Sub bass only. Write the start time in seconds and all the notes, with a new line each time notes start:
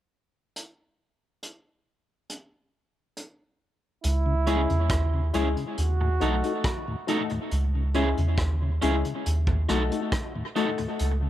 4.04 C#2
4.70 E2
4.90 D#2
5.35 C#2
5.78 D#2
6.21 B1
7.52 C#2
8.18 E2
8.38 D#2
8.83 C#2
9.26 D#2
9.70 B1
11.00 C#2